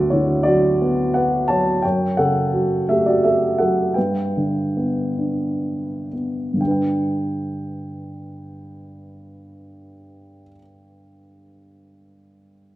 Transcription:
Already playing: D2 F#3 G3 B3 F#4 G4 B4 D5 E5 F#5
0.10 D3 E4 C#5
0.43 F#3 F#4 D5
0.82 B3
1.14 B4 F#5
1.48 F#3 C#5 A5
1.82 F#2 C#5 G5
2.17 C#3 A4 F#5
2.54 F#3
2.89 A3 G4 E5
3.06 F#4 D5
3.24 A4 E5
3.58 F#3 A4 F#5
3.94 G2 B4 G5
4.37 D3
4.77 B3
5.18 D4
6.13 B3
6.54 G2 D3
6.61 G3 D4 G5
6.67 B4 G5

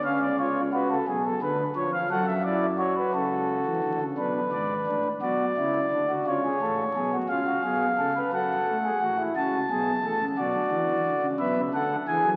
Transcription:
0.04 C#2 C#3 C#4 F5
0.22 D5
0.39 F4 C#5
0.73 F#4 B4
0.91 A4
1.07 B1 B2 G#4
1.25 A4
1.42 D2 D3 B4
1.76 F2 F3 C#5
1.93 F5
2.11 F#2 F#3 A4 F#5
2.27 E5
2.44 E4 D5
2.78 F#4 C#5
2.97 B4
3.14 C#2 C#3 A4
3.66 E2 E3
3.83 D2 D3
4.01 C#2 C#3
4.18 B1 B2 D4 B4
4.52 G#1 G#2 D5
4.87 A1 A2 D4
5.22 B1 B2 F#4 D5
5.57 C#2 C#3 E4
5.91 D2 D3 D4
6.09 F#4
6.27 C#2 C#3 F4 C#5
6.45 G#4
6.62 A1 A2 A4
6.96 B1 B2 G#4
7.13 F#4
7.29 C#2 C#3 F4 F5
7.47 F#4
7.64 B1 B2 G#4
7.98 C#2 C#3 A4
8.16 B4
8.33 F#2 F#3 A4 F#5
8.67 A3
8.84 G#4
9.01 A1 A2 F#4
9.19 E4
9.36 C#2 C#3 F#4 A5
9.70 B1 B2 G#4
10.04 A1 A2 A4
10.21 C#2 C#3
10.38 B1 B2 F#4 D5
10.55 D2 D3
10.71 E2 E3
11.06 D2 D3
11.22 C#2 C#3
11.39 B1 B2 B4 E5
11.56 C#2 C#3
11.74 D2 D3 A4 F#5
12.08 E2 E3 G#4 G#5
12.24 F#2 F#3

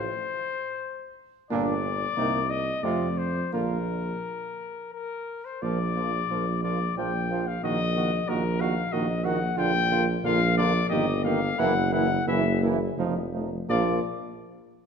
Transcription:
Already playing: C5
1.50 G1 A#2 A#3 D4 D5
2.17 C2 C3 A#3 D#4
2.50 D#5
2.82 F2 C3 A3 F4 D5
3.18 C5
3.52 A#1 D3 A#3 F4 A#4
4.93 A#4
5.45 C5
5.62 A#1 F3 A#3 F4 D5
5.96 F3 A#3 F4
6.30 A#1 F3 A#3 F4
6.63 F3 A#3 F4 D5
6.97 A#1 F3 A#3 F4 G5
7.29 F3 A#3 F4
7.47 F5
7.62 A#1 D#3 A#3 F#4 D#5
7.95 D#3 A#3 F#4
8.28 A#1 D#3 A#3 F#4 A#4
8.60 D#3 A#3 F#4 F5
8.92 A#1 D#3 A#3 F#4 D#5
9.24 D#3 A#3 F#4 F#5
9.57 A#1 D3 A#3 F4 G5
9.91 D3 A#3 F4
10.24 A#1 D3 A#3 F4 F5
10.58 D3 A#3 F4 D5
10.89 G1 D#3 A#3 G4 D#5
11.24 D#3 A#3 G4 F5
11.58 F#1 E3 A#3 E4 F#5
11.92 E3 A#3 E4 F#5
12.26 F#1 E3 A#3 E4 E5
12.62 E3 A#3 E4
12.96 F1 F3 A3 D#4
13.33 F3 A3 D#4
13.69 A#1 F3 A#3 F4 D5

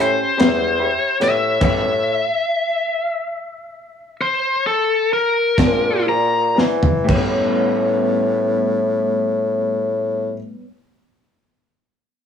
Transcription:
Already playing: G4 B5
0.00 A2 C#4 C5
0.37 E2 G3 B3 C#4 G4 E5 B5, snare, closed hi-hat
0.78 G4 E5 B5
1.20 A2 G4 B4 C#5 E5, snare, closed hi-hat
1.60 A2 G3 B3 C#4 G4 B4 C#5, kick, closed hi-hat, crash
1.65 E5
4.21 C5
4.67 A4
5.13 A#4
5.57 A#2 G#3 C4 D4 G#4 C5 D5, kick, snare, closed hi-hat
6.06 G#4 C5 D5 A#5
6.55 E3 G#4 C5 D5, snare
6.83 floor tom
7.04 A2 G4 B4
7.08 A2 G3 C#5, kick, crash
7.15 B3
7.19 C#4

